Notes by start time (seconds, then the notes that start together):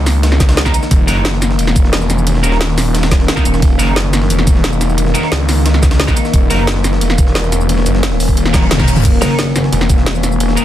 Already playing: C#2 D#3 A#3 D#4
0.06 snare, open hi-hat, ride, shaker
0.23 snare, closed hi-hat, ride
0.32 snare
0.40 kick, snare, closed hi-hat, ride, shaker
0.49 snare, ride
0.57 snare, closed hi-hat
0.65 D#4 F#4 A#4, kick, snare, ride, shaker
0.74 closed hi-hat, ride, shaker
0.83 snare, shaker
0.91 D#1 C#4, kick, closed hi-hat, ride
1.08 F#1 D#4 F#4 A#4, snare, closed hi-hat, open hi-hat, shaker
1.25 snare, closed hi-hat, ride
1.34 snare
1.42 snare, closed hi-hat, ride, shaker
1.50 snare
1.59 E1, closed hi-hat, ride
1.67 snare
1.76 kick, closed hi-hat, ride, shaker
1.84 snare
1.93 snare, closed hi-hat, ride
2.01 shaker
2.10 snare, closed hi-hat, ride, shaker
2.18 shaker
2.27 closed hi-hat, ride
2.35 snare
2.43 D#1 D#4 F#4 A#4, closed hi-hat, ride, shaker
2.52 snare
2.61 snare, closed hi-hat, ride
2.69 snare
2.78 snare, open hi-hat, ride, shaker
2.95 snare, closed hi-hat, ride
3.03 snare, ride
3.12 kick, snare, closed hi-hat, ride, shaker
3.20 snare
3.28 snare, closed hi-hat, ride
3.37 D#4 F#4 A#4, kick, snare, ride, shaker
3.45 D#1, closed hi-hat, ride, shaker
3.54 snare, shaker
3.62 D#1 D#4, kick, closed hi-hat, ride
3.79 F#1 D#4 F#4 A#4, snare, closed hi-hat, open hi-hat, shaker
3.96 snare, closed hi-hat, ride
4.05 snare
4.13 snare, closed hi-hat, ride, shaker
4.22 snare
4.30 E1, closed hi-hat, ride
4.39 snare
4.47 kick, closed hi-hat, ride, shaker
4.56 snare
4.64 snare, closed hi-hat, ride
4.73 shaker
4.81 snare, closed hi-hat, ride, shaker
4.89 shaker
4.98 closed hi-hat, ride
5.06 snare
5.15 D#4 F#4 A#4, closed hi-hat, ride, shaker
5.23 snare
5.32 C#2, snare, closed hi-hat, ride
5.40 snare
5.49 snare, open hi-hat, ride, shaker
5.66 snare, closed hi-hat, ride
5.74 snare
5.83 kick, snare, closed hi-hat, ride, shaker
5.91 snare, ride
6.00 snare, closed hi-hat
6.08 D#4 F#4 A#4, kick, snare, ride, shaker
6.17 closed hi-hat, ride, shaker
6.25 snare, shaker
6.33 D#1 C#4, kick, closed hi-hat, ride
6.50 F#1 D#4 F#4 A#4, snare, closed hi-hat, open hi-hat, shaker
6.67 snare, closed hi-hat, ride
6.76 snare
6.84 snare, closed hi-hat, ride, shaker
6.93 snare
7.01 E1, closed hi-hat, ride
7.10 snare
7.18 kick, closed hi-hat, ride, shaker
7.27 snare
7.35 snare, closed hi-hat, ride
7.44 shaker
7.52 snare, closed hi-hat, ride, shaker
7.61 shaker
7.69 closed hi-hat, ride
7.78 snare
7.86 F#1, closed hi-hat, ride, shaker
7.95 snare
8.03 snare, closed hi-hat, ride
8.12 snare
8.20 D#1, open hi-hat, ride, shaker
8.29 kick, shaker
8.37 closed hi-hat, ride, reverse cymbal
8.45 snare
8.54 D#4 F#4 A#4, kick, snare, closed hi-hat, high tom, ride, shaker
8.62 snare, high tom
8.71 snare, closed hi-hat, mid tom, ride
8.79 D#4 F#4 A#4, kick, snare, mid tom, ride, shaker
8.88 closed hi-hat, ride, shaker
8.96 snare, mid tom, shaker
9.05 D#1 C#4, kick, closed hi-hat, crash, ride
9.21 F#1 D#4 F#4 A#4, snare, closed hi-hat, open hi-hat, shaker
9.39 snare, closed hi-hat, ride
9.47 snare
9.56 snare, closed hi-hat, ride, shaker
9.64 snare
9.72 E1, closed hi-hat, ride
9.81 snare
9.89 kick, closed hi-hat, ride, shaker
9.98 snare
10.06 snare, closed hi-hat, ride
10.15 shaker
10.23 snare, closed hi-hat, ride, shaker
10.32 shaker
10.40 closed hi-hat, ride
10.49 snare
10.57 D#4 F#4 A#4, closed hi-hat, ride, shaker